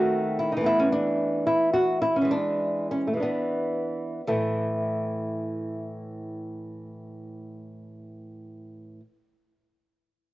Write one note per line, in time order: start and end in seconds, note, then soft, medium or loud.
0.00 0.56 D#3 medium
0.00 0.60 A3 soft
0.00 0.61 C4 soft
0.00 0.37 F#4 medium
0.39 0.52 E4 medium
0.52 0.63 D#4 medium
0.57 2.20 E3 medium
0.61 2.24 A3 soft
0.61 2.27 B3 soft
0.66 0.79 E4 medium
0.80 0.92 C#4 medium
0.92 1.44 D4 medium
1.47 1.73 E4 medium
1.73 2.01 F#4 medium
2.02 2.16 E4 medium
2.16 2.31 C#4 medium
2.21 3.12 E3 medium
2.21 3.13 G#3 soft
2.31 2.89 D4 medium
2.91 3.07 C#4 medium
3.07 3.16 A3 medium
3.13 4.20 E3 soft
3.13 3.22 G#3 soft
3.20 4.24 B3 medium
3.20 4.23 D4 soft
4.27 9.00 A2 medium
4.27 9.00 E3 soft
4.27 9.00 A3 medium